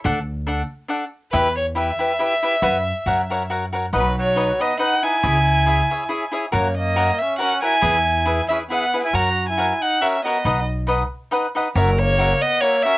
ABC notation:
X:1
M:3/4
L:1/16
Q:"Swing" 1/4=139
K:F#mix
V:1 name="Violin"
z12 | B2 c2 e8- | e8 z4 | B2 c4 d2 f2 g2- |
g8- g2 z2 | c2 d4 e2 f2 g2- | g6 e2 f3 g | a3 g3 f2 e2 d2- |
d2 z8 z2 | A2 c4 d2 c2 e2 |]
V:2 name="Cavaquinho"
[=D=A=df]2 z2 [DAdf]2 z2 [DAdf]2 z2 | [E=GBe]2 z2 [EGBe]2 [EGBe]2 [EGBe]2 [EGBe]2 | [FBcf]2 z2 [FAcf]2 [FAcf]2 [FAcf]2 [FAcf]2 | [DBdf]2 z2 [DBdf]2 [DBdf]2 [DBdf]2 [DBdf]2 |
[EGce]2 z2 [EGce]2 [EGce]2 [EGce]2 [EGce]2 | [FAcf]2 z2 [FAcf]2 z2 [FAcf]2 [FAcf]2 | [EGBe]2 z2 [EGBe]2 [EGBe]2 [EGBe]2 [EGBe]2 | [FAcf]2 z2 [FAcf]2 z2 [FAcf]2 [FAcf]2 |
[DBdf]2 z2 [DBdf]2 z2 [DBdf]2 [DBdf]2 | [FAce]2 z2 [FAce]2 z2 [FAce]2 [FAce]2 |]
V:3 name="Trumpet"
z12 | z12 | z12 | F,2 F,4 B,2 D2 E2- |
E8- E2 z2 | A,2 A,4 C2 C2 E2- | E6 C2 B,3 E | F3 E3 D2 C2 B,2- |
B,2 z8 z2 | F,2 A,4 B,2 A,2 C2 |]
V:4 name="Upright bass" clef=bass
=D,,8 z4 | E,,8 z4 | F,,4 F,,8 | B,,,8 z4 |
C,,8 z4 | F,,8 z4 | E,,8 z4 | F,,8 z4 |
B,,,8 z4 | F,,,8 z4 |]